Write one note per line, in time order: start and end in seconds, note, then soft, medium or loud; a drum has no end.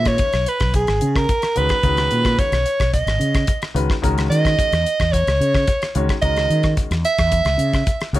0.00 0.16 A#2 medium
0.00 0.25 D#3 medium
0.00 0.25 G#3 medium
0.00 0.26 C#4 medium
0.00 0.26 F#4 medium
0.00 0.26 B4 medium
0.05 0.50 C#5 loud
0.05 kick medium
0.05 cross-stick medium
0.05 closed hi-hat soft
0.18 muted fretless electric bass stroke soft
0.18 kick loud
0.18 closed hi-hat medium
0.33 0.45 B1 medium
0.33 cross-stick medium
0.33 closed hi-hat soft
0.46 0.75 B4 medium
0.46 closed hi-hat medium
0.60 0.84 B1 medium
0.60 kick medium
0.60 cross-stick medium
0.60 closed hi-hat soft
0.74 1.18 G#4 medium
0.74 kick medium
0.74 closed hi-hat medium
0.87 1.00 G#1 medium
0.87 cross-stick medium
0.87 closed hi-hat soft
1.01 1.25 C#3 medium
1.01 closed hi-hat medium
1.16 1.59 A#4 medium
1.16 kick medium
1.16 cross-stick medium
1.29 kick loud
1.29 closed hi-hat medium
1.42 cross-stick medium
1.42 closed hi-hat soft
1.55 1.69 C#2 medium
1.55 1.73 D#3 medium
1.55 1.74 G#3 medium
1.55 1.74 C#4 medium
1.55 1.74 F#4 medium
1.55 1.74 B4 medium
1.55 2.41 B4 loud
1.55 closed hi-hat medium
1.69 kick medium
1.69 cross-stick medium
1.69 closed hi-hat soft
1.83 2.07 C#2 medium
1.83 2.54 D#3 medium
1.83 2.54 G#3 medium
1.83 2.54 C#4 medium
1.83 2.54 F#4 medium
1.83 2.54 B4 medium
1.83 kick medium
1.83 closed hi-hat medium
1.97 cross-stick medium
1.97 closed hi-hat soft
2.11 2.35 A#2 medium
2.11 closed hi-hat medium
2.25 kick medium
2.25 cross-stick medium
2.25 closed hi-hat soft
2.39 2.93 C#5 medium
2.39 kick loud
2.39 closed hi-hat medium
2.52 2.64 B1 medium
2.52 cross-stick medium
2.52 closed hi-hat soft
2.66 closed hi-hat medium
2.80 3.03 B1 medium
2.80 kick medium
2.80 cross-stick medium
2.80 closed hi-hat soft
2.93 3.72 D#5 medium
2.93 kick medium
2.93 closed hi-hat medium
3.06 3.19 G#1 medium
3.06 cross-stick medium
3.06 closed hi-hat soft
3.20 3.44 C#3 medium
3.20 closed hi-hat medium
3.35 kick medium
3.35 cross-stick medium
3.35 closed hi-hat soft
3.47 kick loud
3.47 closed hi-hat medium
3.62 cross-stick medium
3.62 closed hi-hat soft
3.74 3.87 C#2 medium
3.74 3.93 D#3 medium
3.74 3.93 G#3 medium
3.74 3.93 C#4 medium
3.74 3.93 F#4 medium
3.74 3.93 B4 medium
3.74 closed hi-hat medium
3.90 kick medium
3.90 cross-stick medium
4.02 4.27 C#2 medium
4.02 4.73 D#3 medium
4.02 4.73 G#3 medium
4.02 4.73 C#4 medium
4.02 4.73 F#4 medium
4.02 4.73 A#4 medium
4.02 kick medium
4.02 closed hi-hat medium
4.18 cross-stick medium
4.18 closed hi-hat soft
4.30 4.54 D#3 medium
4.30 5.14 D#5 loud
4.30 closed hi-hat medium
4.45 kick medium
4.45 cross-stick medium
4.45 closed hi-hat soft
4.59 kick loud
4.59 closed hi-hat medium
4.72 4.84 E2 medium
4.72 cross-stick medium
4.72 closed hi-hat soft
4.86 closed hi-hat medium
5.00 5.23 E2 medium
5.00 kick medium
5.00 cross-stick medium
5.00 closed hi-hat soft
5.12 5.95 C#5 medium
5.12 kick medium
5.12 closed hi-hat medium
5.27 5.39 C#2 medium
5.27 cross-stick medium
5.27 closed hi-hat soft
5.40 5.64 C#3 medium
5.40 closed hi-hat medium
5.54 kick medium
5.54 cross-stick medium
5.67 kick loud
5.67 closed hi-hat medium
5.82 cross-stick medium
5.82 closed hi-hat soft
5.95 6.07 C#2 medium
5.95 6.13 D#3 medium
5.95 6.13 G#3 medium
5.95 6.13 C#4 medium
5.95 6.13 F#4 medium
5.95 6.14 C#5 medium
5.95 closed hi-hat medium
6.09 kick medium
6.09 cross-stick medium
6.09 closed hi-hat soft
6.22 6.46 C#2 medium
6.22 6.92 D#3 medium
6.22 6.92 G#3 medium
6.22 6.93 C#4 medium
6.22 6.93 F#4 medium
6.22 6.93 A#4 medium
6.22 6.73 D#5 loud
6.22 kick medium
6.22 closed hi-hat medium
6.37 cross-stick medium
6.37 closed hi-hat soft
6.50 6.74 D#3 medium
6.50 closed hi-hat medium
6.63 kick medium
6.63 cross-stick medium
6.63 closed hi-hat soft
6.77 kick loud
6.77 closed hi-hat medium
6.91 7.03 E2 medium
6.91 cross-stick medium
6.91 closed hi-hat soft
7.05 8.11 E5 loud
7.05 closed hi-hat medium
7.18 7.42 E2 medium
7.18 kick medium
7.18 cross-stick medium
7.18 closed hi-hat soft
7.32 kick medium
7.32 closed hi-hat medium
7.45 7.57 C#2 medium
7.45 cross-stick medium
7.45 closed hi-hat soft
7.58 7.82 C#3 medium
7.58 closed hi-hat medium
7.73 kick medium
7.73 cross-stick medium
7.73 closed hi-hat soft
7.87 kick loud
7.87 closed hi-hat medium
8.01 cross-stick medium
8.01 closed hi-hat soft
8.13 8.20 C#2 medium
8.13 8.20 D#3 medium
8.13 8.20 G#3 medium
8.13 8.20 C#4 medium
8.13 8.20 F#4 medium
8.13 8.20 C#5 medium
8.13 closed hi-hat medium